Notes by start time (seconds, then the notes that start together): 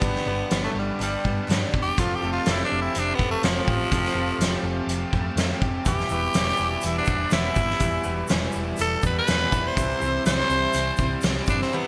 Already playing: B3 D4 G4 D5 B5
0.01 G1 G2 D3 G3 B3 D4 G4 B4, kick, closed hi-hat
0.15 snare
0.25 G1 D3 G3 B3 D4 G4 B4
0.51 G1 G2 D3 G3 B3 D4 G4, snare, closed hi-hat
0.63 A3
0.74 G1 G4
0.79 G3
0.99 G1 G3 B3 D4 G4, closed hi-hat
1.24 G2 G3 B3 D4 G4, kick
1.47 G2 D3 G3 B3 D4 G4, snare, closed hi-hat
1.72 E1 G3 B3 D4 G4, kick
1.82 G4
1.97 F1 F3 A3 C4 F4 G4 A4 F5 A5, kick, closed hi-hat
2.15 G4
2.21 F1 A3 C4 F4 G4 A4
2.32 F4
2.46 F1 F3 A3 C4 G4, snare, closed hi-hat
2.50 E4
2.65 D4
2.71 F1 G4
2.82 E4
2.95 F1 F3 A3 C4 G4, closed hi-hat
2.99 D4
3.15 B3
3.19 F1 A3 C4 G4, kick
3.23 A3
3.31 A3
3.43 F1 F3 A3 C4 G4, snare, closed hi-hat
3.68 A1 A3 C4 G4, kick
3.91 F1 F3 A3 C4 F4 G4 A4, kick, closed hi-hat
4.05 snare
4.14 F1 C4 F4 G4 A4
4.19 A3
4.38 F1 F3 A3, snare, closed hi-hat
4.43 C4 G4
4.63 F1 G4
4.87 F1 F3 A3, closed hi-hat
4.92 C4 G4
5.13 F2 A3 C4 G4, kick
5.36 F2 F3 A3 C4, snare, closed hi-hat
5.40 G4
5.62 F1 A3 C4 G4, kick
5.84 E1 E2 B2 E3 G3 B3 E4 G4 B4 E5 B5, kick, closed hi-hat, shaker
5.89 E4
5.99 snare, shaker
6.09 E1 B2 G3 B3 E4 G4 B4, shaker
6.14 E3
6.34 E1 E2 B2 E3 G3 B3 E4, snare, closed hi-hat, shaker
6.48 snare
6.57 E1 E4, shaker
6.81 E1 E3 G3 B3, closed hi-hat, shaker
6.85 E4
6.98 D4
7.05 E1 E4, kick, shaker
7.09 E3 G3 B3
7.30 E1 E2 B2 E3 G3 B3 E4, snare, closed hi-hat, shaker
7.55 G1 B3 E4, kick, shaker
7.60 E3 G3
7.70 snare
7.79 E1 E2 B2 E3 G3 E4 G4 B4 D5, kick, closed hi-hat, shaker
7.83 B3 E4
8.04 E1 B2 G3 B3 E4 G4 B4, shaker
8.08 E3
8.27 E1 E2 B2 E3 G3, snare, closed hi-hat, shaker
8.32 B3 E4
8.52 E1 E4, shaker
8.77 E1 E3 G3 B3, closed hi-hat, shaker
8.81 E4 A4
9.02 E2 G3 B3 E4 B4, kick, shaker
9.06 E3
9.18 B4
9.27 E2 B2 E3 G3 B3 E4, snare, closed hi-hat, shaker
9.52 E1 E3 G3 B3 E4, kick, shaker
9.67 C5
9.76 C2 C3 E3 G3 C4 E4 G4 C5 E5 C6, kick, closed hi-hat, shaker
9.90 shaker
9.99 C2 E3 C4 E4 G4 C5, shaker
10.04 G3
10.25 C2 C3 E3 G3 C4 E4 C5, snare, closed hi-hat, shaker
10.39 snare
10.49 C2 E4, shaker
10.73 C2 E3 G3 C4 E4, closed hi-hat, shaker
10.97 C2 E4, kick, shaker
11.01 G3 C4
11.21 C2 C3 E3, snare, closed hi-hat, shaker
11.26 G3 C4 E4
11.46 F#1 C4 D4 E4, kick, shaker
11.52 G3
11.61 C4, snare
11.72 C3 E3 G3 B3 C4 E4 G4 C5